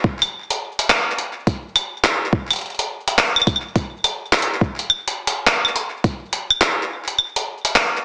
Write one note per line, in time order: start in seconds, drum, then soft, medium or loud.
0.04 kick loud
0.22 closed hi-hat soft
0.22 claves medium
0.50 closed hi-hat medium
0.79 closed hi-hat medium
0.90 clap loud
0.90 claves medium
1.18 closed hi-hat medium
1.47 kick loud
1.47 closed hi-hat medium
1.76 closed hi-hat medium
1.76 claves medium
2.04 clap loud
2.04 closed hi-hat medium
2.33 kick loud
2.50 closed hi-hat soft
2.50 claves medium
2.53 closed hi-hat soft
2.56 closed hi-hat soft
2.59 closed hi-hat soft
2.61 closed hi-hat soft
2.66 closed hi-hat soft
2.70 closed hi-hat soft
2.75 closed hi-hat soft
2.79 closed hi-hat medium
3.08 closed hi-hat medium
3.18 clap loud
3.36 claves medium
3.42 claves medium
3.47 kick loud
3.47 closed hi-hat medium
3.47 claves medium
3.56 claves soft
3.76 kick loud
3.76 closed hi-hat soft
4.04 closed hi-hat medium
4.04 claves medium
4.33 clap loud
4.33 closed hi-hat soft
4.39 closed hi-hat medium
4.42 closed hi-hat medium
4.61 kick loud
4.79 closed hi-hat medium
4.90 claves medium
5.08 closed hi-hat medium
5.27 closed hi-hat medium
5.47 clap loud
5.65 claves medium
5.76 closed hi-hat medium
6.04 kick loud
6.04 closed hi-hat medium
6.33 closed hi-hat medium
6.50 claves medium
6.61 clap loud
6.61 closed hi-hat medium
7.08 closed hi-hat medium
7.18 claves medium
7.36 closed hi-hat medium
7.65 closed hi-hat medium
7.76 clap loud